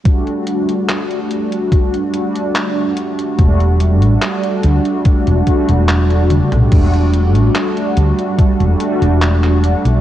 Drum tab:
CC |----------------|----------------|x---------------|
HH |xxxxxxxxxxxxx-xx|xxxxxxxxxxxxxxxx|xxxxxxxxxxxxx-xx|
CP |----x-------x---|----x-------x---|----x-------xx--|
T1 |----------------|--------------o-|----------------|
T2 |----------------|---------------o|----------------|
BD |o-------o-------|o-------o-o-----|o-------o-------|